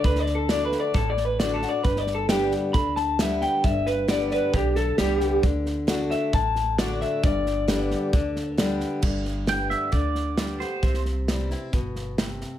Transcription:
<<
  \new Staff \with { instrumentName = "Pedal steel guitar" } { \time 4/4 \key g \major \tempo 4 = 134 r1 | r1 | r1 | r1 |
r1 | r4 g''8 e''8 d''4. c''8~ | c''8 r2. r8 | }
  \new Staff \with { instrumentName = "Clean electric guitar" } { \time 4/4 \key g \major \tuplet 3/2 { b'8 d''8 a'8 d''8 b'8 d''8 a'8 d''8 b'8 d''8 a'8 d''8 } | \tuplet 3/2 { b'8 d''8 a'8 } g'8 r8 b''8 a''8 e''8 g''8 | e''8 b'8 d''8 b'8 g'8 a'8 g'4 | r4. e''8 a''4 d''8 e''8 |
d''2. r4 | r1 | r1 | }
  \new Staff \with { instrumentName = "Steel-string acoustic guitar" } { \clef bass \time 4/4 \key g \major << { r4 <d a d' fis'>4 r4 <d a d' fis'>8 <d' fis'>8 | r4 <d g b g'>4 r4 <d g b g'>4 | r4 <d g b g'>4 r4 <d g b g'>4 | r4 <d a d' fis'>4 r4 <d a d' fis'>4 |
r4 <d g b g'>4 r4 <d g b g'>4 | r4 <d g b g'>4 r4 <d g b g'>8 <b g'>8 | r4 <e g c' e'>8 <c' e'>8 r2 | } \\ { d2 a,2 | g,2 d2 | g,2 r2 | d2 a,2 |
g,2 d2 | g,2 d2 | c2 b,4 c4 | } >> }
  \new Staff \with { instrumentName = "Upright bass" } { \clef bass \time 4/4 \key g \major d,2 a,,2 | g,,2 d,2 | g,,2 b,,4 c,4 | d,2 a,,2 |
g,,2 d,2 | g,,2 d,2 | c,2 g,,2 | }
  \new DrumStaff \with { instrumentName = "Drums" } \drummode { \time 4/4 <bd sn>16 sn16 sn8 <hhp sn>8 sn8 <bd sn>8 sn8 <hhp sn>8 sn8 | <bd sn>16 sn16 sn8 <hhp sn>8 sn8 <bd sn>8 sn8 <hhp sn>8 sn8 | <bd sn>8 sn8 <hhp sn>8 sn8 <bd sn>8 sn8 <hhp sn>8 sn8 | <bd sn>8 sn8 <hhp sn>8 sn8 <bd sn>8 sn8 <hhp sn>8 sn8 |
<bd sn>8 sn8 <hhp sn>8 sn8 <bd sn>8 sn8 <hhp sn>8 sn8 | <cymc bd sn>8 sn8 <hhp sn>8 sn8 <bd sn>8 sn8 <hhp sn>8 sn8 | <bd sn>16 sn16 sn8 <hhp sn>8 sn8 <bd sn>8 sn8 <hhp sn>8 sn8 | }
>>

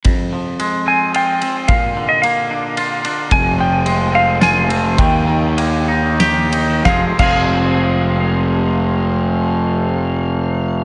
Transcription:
<<
  \new Staff \with { instrumentName = "Electric slide guitar" } { \time 3/4 \key f \dorian \tempo 4 = 104 r4. aes''8 g''4 | f''8. ees''16 f''4. r8 | aes''8 g''4 f''8 aes''4 | g''4. r4. |
f''16 r16 f''2~ f''8~ | f''2. | }
  \new Staff \with { instrumentName = "Clean electric guitar" } { \time 3/4 \key f \dorian f,8 f8 aes8 c'8 f'8 c'8 | bes,8 d8 bes8 d'8 f'8 d'8 | f,8 f8 aes8 c'8 f'8 c'8 | ees8 ees8 bes8 ees'8 g'8 ees'8 |
<f, c f aes c' aes'>8 <f, c f aes c' aes'>2~ <f, c f aes c' aes'>8~ | <f, c f aes c' aes'>2. | }
  \new Staff \with { instrumentName = "Fingered electric bass" } { \clef bass \time 3/4 \key f \dorian r2. | r2. | f,,2. | ees,2. |
f,,8 f,,2~ f,,8~ | f,,2. | }
  \new DrumStaff \with { instrumentName = "Drums" } \drummode { \time 3/4 <bd cymr>4 cymr4 cymr8 cymr8 | <bd cymr>4 cymr4 cymr8 cymr8 | <bd cymr>4 cymr4 <cymr sn>8 cymr8 | <bd cymr>4 cymr4 <cymr sn>8 cymr8 |
<bd sn>8 <cymc bd>8 r4 r4 | r4 r4 r4 | }
>>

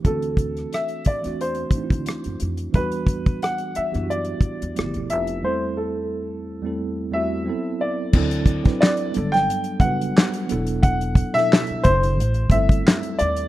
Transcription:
<<
  \new Staff \with { instrumentName = "Grand piano" } { \time 4/4 \key d \mixolydian \tempo 4 = 89 a'4 e''8 d''8 c''4. r8 | b'4 fis''8 e''8 d''4. e''8 | c''8 a'2 e''4 d''8~ | d''4 d''8. g''8. fis''4. |
fis''8. e''8. c''4 e''4 d''8 | }
  \new Staff \with { instrumentName = "Tine electric piano" } { \time 4/4 \key d \mixolydian <e a c' d' fis'>4. r16 <e a c' d' fis'>8 r16 <e a c' d' dis' e'>4~ <e a c' d' dis' e'>16 r16 | <e g b d' fis'>4. r16 <e b d' e' fis' g'>4~ <e b d' e' fis' g'>16 <f a b e' fis' g'>8. r16 | <e, g a c' e' a'>4. r16 <e, g a c' e' a'>8 r16 <e, g a c' e' fis'>8 <fis b c' e' a'>8. r16 | <fis c' d' e' a'>8 r16 <fis c' d' e' b'>8. <fis g b d' a'>8. r16 <g b d' fis' b'>4 <fis b d' e' a'>8~ |
<fis b d' e' a'>8 r16 <b, fis d' e' a'>4~ <b, fis d' e' a'>16 r8 <g a c' e' a'>4~ <g a c' e' a'>16 r16 | }
  \new Staff \with { instrumentName = "Upright bass" } { \clef bass \time 4/4 \key d \mixolydian d,4 r8. e,8. r16 d,16 r16 fis,16 f,8 | e,4 r8. fis,8. r16 e,16 g,,16 e,,16 f,,8 | r1 | d,8. r8. g,,8 r8 fis,,8 r8 e,,8~ |
e,,8. r8. fis,,8 a,,8 g,,8 r8 dis,8 | }
  \new DrumStaff \with { instrumentName = "Drums" } \drummode { \time 4/4 <hh bd>16 hh16 <hh bd>16 <hh ss>16 <hh ss>16 hh16 <hh bd>16 <hh ss>16 hh16 hh16 <hh bd>16 <hh bd>16 <hh ss>16 hh16 hh16 hh16 | <hh bd>16 hh16 <hh bd>16 <hh bd>16 <hh ss>16 hh16 hh16 <hh ss>16 hh16 hh16 <hh bd>16 hh16 <hh ss>16 hh16 hh16 hh16 | r4 r4 r4 r4 | <cymc bd>16 hh16 <hh bd>16 <hh bd sn>16 <hc sn>16 hh16 hh16 <hh sn>16 hh16 hh16 <hh bd>16 hh16 <hc sn>16 hh16 hh16 hh16 |
<hh bd>16 hh16 <hh bd>16 <hh sn>16 <hc sn>16 hh16 <hh bd>16 hh16 hh16 hh16 <hh bd>16 <hh bd>16 <hc sn>16 hh16 hh16 hh16 | }
>>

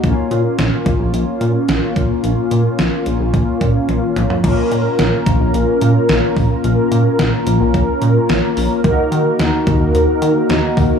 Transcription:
<<
  \new Staff \with { instrumentName = "Analog polysynth" } { \time 4/4 \key bes \minor \tempo 4 = 109 <bes des' f'>1~ | <bes des' f'>1 | <bes des' f' bes'>1~ | <bes des' f' bes'>1 |
<bes ees' ges' bes'>1 | }
  \new Staff \with { instrumentName = "Analog synth bass" } { \clef bass \time 4/4 \key bes \minor bes,,16 r16 bes,16 r16 bes,,16 r16 bes,,16 bes,,16 bes,,16 r16 bes,16 r16 bes,,16 r16 bes,,16 r16 | bes,,16 r16 bes,16 r16 bes,,16 r16 bes,,16 bes,,16 bes,,16 r16 bes,16 r16 bes,,16 r16 bes,,16 r16 | bes,,16 r16 bes,16 r16 bes,,16 r16 bes,,16 bes,,16 bes,,16 r16 bes,16 r16 bes,,16 r16 bes,,16 r16 | bes,,16 r16 bes,16 r16 bes,,16 r16 bes,,16 bes,,16 bes,,16 r16 bes,16 r16 bes,,16 r16 bes,,16 r16 |
ees,16 r16 ees16 r16 ees,16 r16 ees,16 ees,16 ees,16 r16 ees16 r16 ees,16 r16 ees,16 r16 | }
  \new DrumStaff \with { instrumentName = "Drums" } \drummode { \time 4/4 <hh bd>8 hh8 <hh sn>8 <hh bd>8 hh8 hh8 <hh sn>8 <hh bd>8 | hh8 hh8 <hh sn>8 hh8 <hh bd>8 <hh bd>8 <hh tommh>8 <hh toml>16 tomfh16 | <cymc hh bd>8 hh8 <hh sn>8 <hh bd>8 hh8 hh8 <hh sn>8 <hho bd>8 | hh8 hh8 <hh sn>8 hh8 <hh bd>8 hh8 <hh sn>8 hho8 |
<hh bd>8 hh8 <hh sn>8 <hh bd>8 hh8 hh8 <hh sn>8 <hho bd>8 | }
>>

